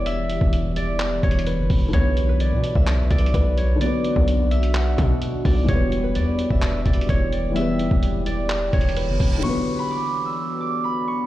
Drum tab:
HH |x-----x-----x-----x-----x-----x-x-x-x-----o-----|x-----x-----x-----x-----x-----x-x-x-x-----x-----|x-----x-----x-----x--x--x-----x-----x-----o-----|x-----x-----x-----x-----x-----x-x-x-x-----x-----|
CP |------------------------x-----------------------|------------------------x-----------------------|------------------------x-----------------------|------------------------x-----------------------|
BD |---------o--------------------o-----------o-----|o--------------------o--------o-----o-----------|---------o--------------------o-----------o-----|o--------------------o--------o-----o-----------|

HH |x-----x-----x-----x-----x-----x-x-x-x-----o-----|------------------------------------------------|
CP |------------------------x-----------------------|------------------------------------------------|
BD |---------o--------------------o-----------o-----|------------------------------------------------|